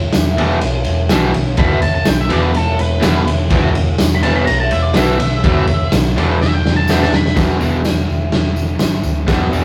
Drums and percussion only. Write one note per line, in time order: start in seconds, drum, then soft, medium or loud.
0.13 snare loud
0.13 ride loud
0.13 tambourine loud
0.38 ride medium
0.61 ride loud
0.84 ride medium
1.09 snare loud
1.09 ride medium
1.09 tambourine loud
1.34 ride medium
1.57 kick loud
1.57 ride medium
1.82 ride medium
2.05 snare loud
2.05 ride medium
2.05 tambourine loud
2.30 ride medium
2.54 ride loud
2.79 ride medium
3.03 snare loud
3.03 ride medium
3.03 tambourine loud
3.27 ride medium
3.50 kick loud
3.50 ride loud
3.75 ride medium
3.98 snare loud
3.98 ride medium
3.98 tambourine loud
4.23 ride medium
4.47 ride loud
4.71 ride medium
4.94 snare loud
4.94 ride loud
4.94 tambourine loud
5.20 ride medium
5.44 kick loud
5.44 ride loud
5.67 ride medium
5.92 snare loud
5.92 ride loud
5.92 tambourine medium
6.18 ride medium
6.41 snare medium
6.65 snare medium
6.88 snare medium
6.88 tambourine loud
7.03 snare medium
7.13 snare loud
7.26 snare medium
7.37 kick loud
7.37 snare loud
7.37 tambourine medium
7.37 crash medium
7.61 tambourine medium
7.85 snare loud
7.85 tambourine medium
7.85 crash medium
8.09 tambourine soft
8.32 snare loud
8.32 crash medium
8.56 tambourine medium
8.79 snare loud
8.79 tambourine loud
8.79 crash medium
9.03 tambourine medium
9.28 kick loud
9.28 snare loud
9.28 tambourine medium
9.28 crash medium
9.53 tambourine medium